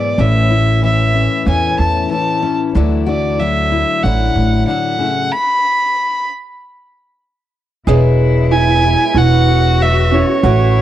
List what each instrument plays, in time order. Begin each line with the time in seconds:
Already playing: steel-string acoustic guitar G#2 B2 E3 F#3 G#3 B3 E4, fiddle D5
0.18 upright bass A1, steel-string acoustic guitar A2 E3 A3 C#4 E4, fiddle E5
0.50 steel-string acoustic guitar A3 C#4 E4
0.82 steel-string acoustic guitar E3 A3 C#4 E4, fiddle E5
1.14 steel-string acoustic guitar C#4
1.45 upright bass E2, steel-string acoustic guitar A2 E3 A3 C#4 E4, fiddle G#5
1.79 upright bass E2, fiddle A5
2.10 steel-string acoustic guitar E3 A3 C#4 E4, fiddle A5
2.42 steel-string acoustic guitar C#4
2.75 upright bass D2, steel-string acoustic guitar D3 F#3 A3 D4 E4
3.06 steel-string acoustic guitar A3 D4 E4 F#4, fiddle D5
3.39 steel-string acoustic guitar F#3 A3 D4 E4, fiddle E5
3.72 steel-string acoustic guitar E4
4.02 upright bass A1, steel-string acoustic guitar A2 D3 F#3 A3 D4, fiddle F#5
4.06 steel-string acoustic guitar E4
4.36 upright bass A1
4.66 steel-string acoustic guitar D3 F#3 A3 D4, fiddle F#5
4.70 steel-string acoustic guitar E4
4.98 steel-string acoustic guitar C#3 E4
5.03 steel-string acoustic guitar A3
5.32 fiddle B5
7.87 upright bass E1, steel-string acoustic guitar E2 B2 F#3 G#3 B3 E4, cello E4, upright piano G#4
8.51 upright piano E4, fiddle G#5
8.84 steel-string acoustic guitar F#3 G#3 B3 E4
9.15 upright bass E1, steel-string acoustic guitar F#3 G#3 B3 E4, upright piano E4, cello F#4, fiddle F#5
9.48 steel-string acoustic guitar F#3 G#3 B3 E4
9.81 steel-string acoustic guitar F#3 G#3 B3 E4, fiddle E5
10.12 steel-string acoustic guitar F#3 G#3 B3 E4, upright piano C#4, fiddle C#5
10.43 upright bass A1, steel-string acoustic guitar A2 E3 A3 C#4 E4, cello E4, upright piano F#4